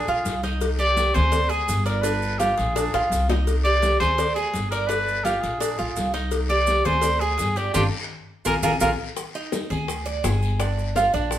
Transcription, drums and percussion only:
0.07 high conga, maracas
0.25 cowbell, high conga, short guiro, maracas
0.43 cowbell, high conga, short guiro, maracas
0.61 cowbell, high conga, long guiro, maracas
0.79 high conga, maracas
0.97 cowbell, high conga, short guiro, maracas
1.15 cowbell, high conga, low conga, short guiro, maracas
1.32 cowbell, high conga, low conga, long guiro, maracas
1.50 high conga, maracas
1.68 cowbell, high conga, short guiro, maracas
1.86 cowbell, high conga, short guiro, maracas
2.03 cowbell, long guiro, maracas
2.22 high conga, maracas
2.40 cowbell, high conga, short guiro, maracas
2.58 cowbell, high conga, short guiro, maracas
2.75 cowbell, high conga, long guiro, maracas
2.93 high bongo, high conga, maracas
3.10 cowbell, high conga, short guiro, maracas
3.28 cowbell, low bongo, high conga, short guiro, maracas
3.47 cowbell, high conga, long guiro, maracas
3.65 high conga, maracas
3.82 cowbell, high conga, short guiro, maracas
4.00 cowbell, high conga, low conga, short guiro, maracas
4.18 cowbell, high conga, low conga, long guiro, maracas
4.36 high conga, maracas
4.53 cowbell, high conga, short guiro, maracas
4.71 cowbell, high conga, short guiro, maracas
4.89 cowbell, high conga, long guiro, maracas
5.07 high conga, maracas
5.25 cowbell, high conga, short guiro, maracas
5.43 cowbell, high conga, short guiro, maracas
5.61 cowbell, high conga, long guiro, maracas
5.79 high conga, maracas
5.96 cowbell, high conga, short guiro, maracas
6.14 cowbell, short guiro, maracas
6.31 cowbell, high conga, long guiro, maracas
6.49 high conga, maracas
6.67 cowbell, high conga, short guiro, maracas
6.85 cowbell, high conga, low conga, short guiro, maracas
7.02 cowbell, high conga, low conga, long guiro, maracas
7.21 maracas
7.38 cowbell, high conga, short guiro, maracas
7.56 cowbell, high conga, short guiro, maracas
7.74 cowbell, low conga, long guiro, maracas
8.45 cowbell, low conga, long guiro, maracas
8.63 cowbell, low conga, long guiro, maracas
8.80 cowbell, low conga, long guiro, maracas
9.17 high bongo, high conga, long guiro, maracas
9.35 high conga, maracas
9.52 high bongo, high conga, short guiro, maracas
9.70 high conga, low conga, short guiro, maracas
9.88 high bongo, long guiro, maracas
10.06 high conga, maracas
10.24 high bongo, low bongo, high conga, short guiro, maracas
10.42 high conga, short guiro, maracas
10.60 high bongo, high conga, long guiro, maracas
10.78 high bongo, high conga, maracas
10.96 high bongo, high conga, short guiro, maracas
11.13 high bongo, high conga, short guiro, maracas
11.31 high bongo, high conga, long guiro, maracas

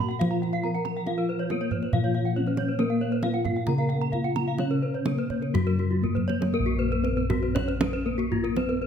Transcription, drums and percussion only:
0.11 kendang slap
0.21 kendang low
0.43 kendang slap
0.63 kendang slap
0.75 kendang slap
0.85 kendang high
1.06 kendang high
1.50 kendang slap, kendang high
1.71 kendang low
1.82 kendang slap
1.93 kendang low
2.14 kendang slap
2.36 kendang slap
2.46 kendang slap
2.57 kendang high
2.79 kendang high
3.23 kendang slap, kendang high
3.45 kendang high, kendang low
3.56 kendang slap
3.67 kendang low
3.90 kendang slap
4.13 kendang slap, kendang low
4.25 kendang slap
4.36 kendang high
4.58 kendang high
5.06 kendang slap, kendang high
5.18 kendang slap
5.30 kendang low
5.42 kendang slap
5.55 kendang slap, kendang low
5.67 kendang slap
5.79 kendang slap
6.04 kendang low
6.17 kendang low
6.29 kendang high
6.42 kendang high
7.04 kendang slap
7.30 kendang slap, kendang high, kendang low
7.43 kendang slap
7.56 kendang high, kendang low
7.68 kendang slap
7.81 kendang slap, kendang high
8.19 kendang slap
8.32 kendang low
8.44 kendang slap
8.56 kendang high

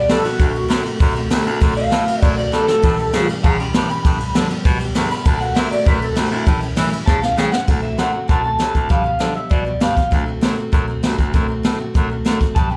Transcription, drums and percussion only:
0.09 snare, ride
0.25 ride
0.39 kick, ride
0.55 ride
0.70 snare, ride
0.85 ride
1.00 kick, ride
1.16 ride
1.31 snare, ride
1.47 ride
1.62 kick, ride
1.77 ride
1.92 snare, ride
2.07 ride
2.22 kick, ride
2.38 ride
2.53 snare
2.68 snare
2.83 kick, ride
2.99 ride
3.14 snare, ride
3.29 ride
3.44 kick, ride
3.60 ride
3.74 snare, ride
3.90 ride
4.05 kick, ride
4.20 ride
4.35 snare, ride
4.50 ride
4.65 kick, ride
4.80 ride
4.95 snare, ride
5.11 ride
5.25 kick, ride
5.41 ride
5.56 snare, ride
5.72 ride
5.86 kick, ride
6.02 ride
6.16 snare, ride
6.32 ride
6.46 kick, ride
6.62 ride
6.77 snare, ride
6.93 ride
7.07 kick, snare
7.23 snare
7.38 snare
7.53 snare
7.68 kick, crash
7.99 snare, closed hi-hat
8.29 kick, closed hi-hat
8.60 snare, closed hi-hat
8.75 kick, closed hi-hat
8.90 kick, closed hi-hat
9.20 snare, closed hi-hat
9.51 kick, closed hi-hat
9.81 snare, closed hi-hat
9.97 kick, closed hi-hat
10.12 kick, closed hi-hat
10.42 snare, closed hi-hat
10.73 kick, closed hi-hat
11.03 snare, closed hi-hat
11.19 kick, closed hi-hat
11.34 kick, closed hi-hat
11.65 snare, closed hi-hat
11.95 kick, closed hi-hat
12.26 snare, closed hi-hat
12.41 kick, closed hi-hat
12.56 kick, closed hi-hat

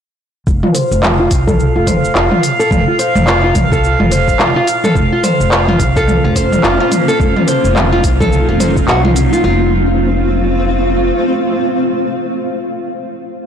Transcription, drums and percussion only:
0.47 kick, cabasa
0.63 mid tom
0.75 open hi-hat, cabasa
0.92 cabasa
1.03 clap, mid tom, cabasa
1.31 kick, open hi-hat, cabasa
1.48 kick, mid tom, cabasa
1.60 cabasa
1.87 kick, mid tom, open hi-hat, cabasa
2.05 cabasa
2.15 clap, cabasa
2.32 mid tom
2.43 open hi-hat, cabasa
2.60 cabasa
2.71 kick, mid tom, cabasa
2.99 open hi-hat, cabasa
3.16 mid tom, cabasa
3.27 clap, cabasa
3.55 kick, mid tom, open hi-hat, cabasa
3.72 kick, cabasa
3.84 cabasa
4.00 mid tom
4.12 open hi-hat, cabasa
4.28 kick, cabasa
4.40 clap, mid tom, cabasa
4.67 open hi-hat, cabasa
4.84 mid tom, cabasa
4.95 kick, cabasa
5.24 mid tom, open hi-hat, cabasa
5.41 cabasa
5.52 clap, cabasa
5.68 mid tom
5.80 kick, open hi-hat, cabasa
5.96 kick, cabasa
6.08 mid tom, cabasa
6.36 kick, open hi-hat, cabasa
6.52 mid tom, cabasa
6.64 clap, cabasa
6.92 mid tom, open hi-hat, cabasa
7.09 cabasa
7.20 kick, cabasa
7.37 mid tom
7.48 open hi-hat, cabasa
7.65 cabasa
7.76 clap, mid tom, cabasa
8.04 kick, open hi-hat, cabasa
8.20 kick, mid tom, cabasa
8.33 cabasa
8.60 mid tom, open hi-hat, cabasa
8.77 kick, cabasa
8.88 clap, cabasa
9.05 mid tom
9.16 open hi-hat, cabasa
9.33 cabasa

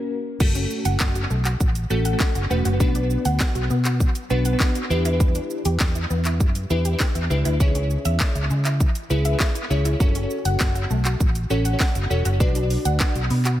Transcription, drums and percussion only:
0.40 kick, crash, shaker
0.55 closed hi-hat, shaker
0.70 shaker
0.85 closed hi-hat, shaker
1.00 kick, snare, clap, shaker
1.15 closed hi-hat, shaker
1.30 shaker
1.45 clap, closed hi-hat, shaker
1.60 kick, shaker
1.75 closed hi-hat, shaker
1.90 shaker
2.05 closed hi-hat, shaker
2.20 kick, snare, clap, shaker
2.35 closed hi-hat, shaker
2.51 shaker
2.65 closed hi-hat, shaker
2.80 kick, shaker
2.95 closed hi-hat, shaker
3.10 shaker
3.25 closed hi-hat, shaker
3.40 kick, snare, clap, shaker
3.55 closed hi-hat, shaker
3.70 shaker
3.85 clap, closed hi-hat, shaker
4.00 kick, shaker
4.15 closed hi-hat, shaker
4.30 shaker
4.45 closed hi-hat, shaker
4.60 kick, snare, clap, shaker
4.75 closed hi-hat, shaker
4.91 shaker
5.05 closed hi-hat, shaker
5.20 kick, shaker
5.35 closed hi-hat, shaker
5.50 shaker
5.65 closed hi-hat, shaker
5.80 kick, snare, clap, shaker
5.95 closed hi-hat, shaker
6.10 shaker
6.25 clap, closed hi-hat, shaker
6.40 kick, shaker
6.55 closed hi-hat, shaker
6.70 shaker
6.85 closed hi-hat, shaker
7.00 kick, snare, clap, shaker
7.15 closed hi-hat, shaker
7.31 shaker
7.45 closed hi-hat, shaker
7.60 kick, shaker
7.75 closed hi-hat, shaker
7.90 shaker
8.05 closed hi-hat, shaker
8.20 kick, snare, clap, shaker
8.35 closed hi-hat, shaker
8.50 shaker
8.65 clap, closed hi-hat, shaker
8.80 kick, shaker
8.95 closed hi-hat, shaker
9.10 shaker
9.25 closed hi-hat, shaker
9.40 kick, snare, clap, shaker
9.55 closed hi-hat, shaker
9.71 shaker
9.85 closed hi-hat, shaker
10.00 kick, shaker
10.15 closed hi-hat, shaker
10.30 shaker
10.45 closed hi-hat, shaker
10.60 kick, snare, clap, shaker
10.75 closed hi-hat, shaker
10.90 shaker
11.05 clap, closed hi-hat, shaker
11.20 kick, shaker
11.35 closed hi-hat, shaker
11.50 shaker
11.65 closed hi-hat, shaker
11.80 kick, snare, clap, shaker
11.95 closed hi-hat, shaker
12.11 shaker
12.25 closed hi-hat, shaker
12.40 kick, shaker
12.55 closed hi-hat, shaker
12.70 open hi-hat, shaker
12.85 closed hi-hat, shaker
13.00 kick, snare, clap, shaker
13.15 closed hi-hat, shaker
13.30 open hi-hat, shaker
13.45 clap, closed hi-hat, shaker

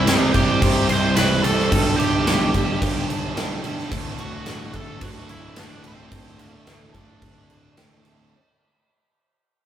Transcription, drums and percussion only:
0.07 snare, crash
0.34 kick, crash
0.62 kick, crash
0.89 crash
1.16 snare, crash
1.44 crash
1.59 snare
1.72 kick, crash
2.00 crash
2.27 snare, crash
2.54 kick, crash
2.82 kick, crash
3.10 crash
3.37 snare, crash
3.64 crash
3.78 snare
3.91 kick, crash
4.05 snare
4.19 crash
4.46 snare, crash
4.73 kick, crash
5.01 kick, crash
5.29 crash
5.56 snare, crash
5.84 crash
6.12 kick, crash
6.26 snare
6.39 crash
6.67 snare, crash
6.94 kick, crash
7.22 kick, crash
7.50 crash
7.77 snare, crash
8.05 crash

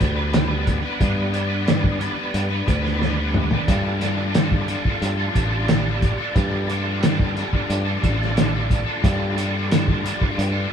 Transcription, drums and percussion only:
0.01 kick, closed hi-hat
0.33 snare, closed hi-hat
0.67 kick, closed hi-hat
1.01 kick, closed hi-hat
1.34 closed hi-hat
1.68 snare, closed hi-hat
1.84 kick
2.01 closed hi-hat
2.34 closed hi-hat
2.68 kick, closed hi-hat
2.85 snare
3.02 snare
3.34 mid tom
3.51 floor tom
3.68 kick, closed hi-hat
4.01 snare, closed hi-hat
4.35 snare, closed hi-hat
4.52 kick
4.68 closed hi-hat
4.85 kick
5.02 closed hi-hat
5.35 kick, closed hi-hat
5.68 snare, closed hi-hat
6.02 kick, closed hi-hat
6.36 kick, closed hi-hat
6.70 closed hi-hat
7.03 snare, closed hi-hat
7.20 kick
7.37 closed hi-hat
7.53 kick
7.70 closed hi-hat
8.03 kick, closed hi-hat
8.22 snare
8.37 snare, closed hi-hat
8.70 kick, closed hi-hat
9.04 kick, closed hi-hat
9.38 closed hi-hat
9.72 snare, closed hi-hat
9.88 kick
10.06 closed hi-hat
10.21 kick
10.39 closed hi-hat

